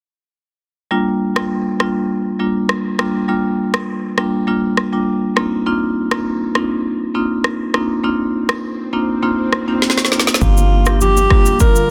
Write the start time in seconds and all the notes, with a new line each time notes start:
0.91 G3 A#3 D4 F4
1.36 G3 A#3 D4 F4, cross-stick
1.80 G3 A#3 D4 F4, cross-stick
2.39 G3 A#3 D4 F4
2.69 cross-stick
2.99 G3 A#3 D4 F4, cross-stick
3.28 G3 A#3 D4 F4
3.74 cross-stick
4.17 G3 A#3 D4 F4, cross-stick
4.47 G3 A#3 D4 F4
4.77 cross-stick
4.92 G3 A#3 D4 F4
5.36 A#3 C4 D4 D#4 F4, cross-stick
5.66 A#3 C4 D4 D#4 F4, swell
6.11 A#3 C4 D4 D#4 F4, cross-stick
6.55 A#3 C4 D4 D#4 F4, cross-stick
7.14 A#3 C4 D4 D#4 F4
7.44 cross-stick
7.74 A#3 C4 D4 D#4 F4, cross-stick
8.04 A#3 C4 D4 D#4 F4
8.49 cross-stick
8.93 A#3 C4 D4 D#4 F4
9.22 A#3 C4 D4 D#4 F4
9.53 cross-stick
9.68 A#3 C4 D4 D#4 F4
9.82 snare
9.90 snare
9.98 snare
10.05 snare
10.12 A#3 C4 D4 D#4 F4, snare
10.20 snare
10.27 snare
10.34 snare
10.41 G1 D3 G3 A#3 D4 F4 G4, kick, low conga, shaker
10.57 high conga, shaker
10.86 A#3 D4 F4 G4, cross-stick, shaker
11.01 G4, low conga, shaker
11.17 high conga, shaker
11.30 A#3 D4 F4 G4, kick, cross-stick
11.46 high conga, shaker
11.60 A#4, kick, low conga, shaker
11.76 shaker